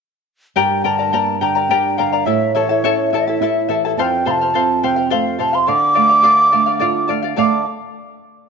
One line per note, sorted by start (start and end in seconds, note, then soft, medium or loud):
0.56 2.23 G2 medium
0.56 0.84 G4 medium
0.56 0.83 A#4 medium
0.56 0.84 D5 medium
0.56 0.83 G5 medium
0.56 0.85 A#5 medium
0.84 1.12 D3 soft
0.84 0.99 A#4 medium
0.84 0.98 D5 medium
0.84 0.99 G5 medium
0.84 1.38 A5 medium
0.84 0.97 A#5 medium
0.99 1.12 A#4 soft
0.99 1.13 D5 soft
0.99 1.13 A#5 soft
1.12 1.40 A#3 soft
1.12 1.40 A#4 soft
1.12 1.41 D5 medium
1.12 1.40 G5 medium
1.12 1.41 A#5 medium
1.41 1.69 D3 soft
1.41 1.55 A#4 soft
1.41 1.55 D5 medium
1.41 1.99 G5 medium
1.41 1.55 G5 soft
1.41 1.54 A#5 medium
1.55 1.70 A#4 soft
1.55 1.70 D5 soft
1.55 1.70 A#5 soft
1.69 1.97 D4 medium
1.69 1.99 G4 medium
1.69 1.97 A#4 medium
1.69 1.97 D5 medium
1.69 1.97 G5 medium
1.69 1.98 A#5 medium
1.98 2.26 D3 soft
1.98 2.13 A#4 medium
1.98 2.12 D5 medium
1.98 2.27 F5 medium
1.98 2.12 G5 soft
1.98 2.11 A#5 medium
2.13 2.26 A#4 soft
2.13 2.27 D5 soft
2.13 2.27 A#5 soft
2.26 3.93 A2 medium
2.26 2.54 E4 medium
2.26 2.54 A4 medium
2.26 2.55 E5 medium
2.26 2.54 E5 soft
2.26 2.54 A5 medium
2.55 2.83 E3 soft
2.55 2.69 E4 medium
2.55 2.69 A4 medium
2.55 3.12 C#5 medium
2.55 2.69 E5 medium
2.55 2.68 A5 medium
2.69 2.83 E4 soft
2.69 2.84 A4 soft
2.69 2.84 A5 soft
2.84 3.11 C#4 soft
2.84 3.13 E4 medium
2.84 3.13 A4 medium
2.84 3.12 C#5 medium
2.84 3.12 E5 medium
2.84 3.13 A5 medium
3.10 3.40 E3 soft
3.10 3.27 E4 medium
3.10 3.27 A4 medium
3.10 3.76 E5 medium
3.10 3.27 E5 soft
3.14 3.26 A5 medium
3.27 3.41 E4 soft
3.27 3.41 A4 soft
3.27 3.41 A5 soft
3.41 3.68 E4 soft
3.41 3.68 E4 medium
3.41 3.68 A4 medium
3.41 3.67 E5 soft
3.41 3.69 A5 medium
3.69 3.97 E3 soft
3.69 3.84 E4 soft
3.69 3.84 A4 medium
3.69 3.83 E5 soft
3.69 3.84 A5 medium
3.85 3.98 E4 soft
3.85 3.97 A4 soft
3.85 3.98 A5 medium
3.97 5.64 F2 medium
3.97 4.24 A4 medium
3.97 4.25 C5 medium
3.97 4.26 F5 medium
3.97 4.03 A5 medium
4.02 4.29 G5 medium
4.25 4.54 C3 soft
4.25 4.40 A4 medium
4.25 4.41 C5 medium
4.25 4.40 F5 medium
4.25 4.32 C6 medium
4.31 4.85 A5 medium
4.41 4.54 C5 soft
4.41 4.55 F5 soft
4.54 4.83 F3 soft
4.54 4.82 A4 medium
4.54 4.82 C5 medium
4.54 4.83 F5 medium
4.83 5.11 C3 soft
4.83 4.98 A4 medium
4.83 4.96 C5 medium
4.83 4.95 F5 medium
4.83 5.11 G5 medium
4.96 5.10 C5 soft
4.96 5.11 F5 soft
5.10 5.40 A3 soft
5.10 5.37 A4 medium
5.10 5.38 C5 medium
5.10 5.38 F5 medium
5.10 5.39 F5 medium
5.39 5.67 C3 soft
5.39 5.54 A4 soft
5.39 5.53 C5 soft
5.39 5.52 F5 soft
5.39 5.56 A5 medium
5.53 5.68 C5 soft
5.53 5.67 F5 soft
5.53 5.70 C6 medium
5.67 7.35 D3 medium
5.67 5.93 A4 medium
5.67 5.94 D5 medium
5.67 5.94 F5 medium
5.67 7.10 D6 loud
5.94 6.24 A3 soft
5.94 6.10 A4 medium
5.94 6.09 D5 medium
5.94 6.08 F5 medium
6.09 6.22 D5 soft
6.09 6.22 F5 soft
6.22 6.53 D4 soft
6.22 6.51 A4 medium
6.22 6.51 D5 medium
6.22 6.52 F5 medium
6.52 6.81 A3 soft
6.52 6.67 A4 medium
6.52 6.66 D5 medium
6.52 6.65 F5 medium
6.66 6.79 D5 soft
6.66 6.80 F5 soft
6.79 7.09 F4 soft
6.79 7.07 A4 soft
6.79 7.08 D5 medium
6.79 7.09 F5 medium
7.08 7.36 A3 soft
7.08 7.23 A4 medium
7.08 7.23 D5 medium
7.08 7.21 F5 medium
7.22 7.36 D5 soft
7.22 7.37 F5 soft
7.36 7.65 D3 soft
7.36 7.64 A3 soft
7.36 7.65 D4 soft
7.36 7.60 A4 medium
7.36 7.65 A4 soft
7.36 7.61 D5 medium
7.36 7.61 F5 medium
7.36 7.65 F5 soft
7.36 7.65 A5 soft
7.36 7.65 D6 medium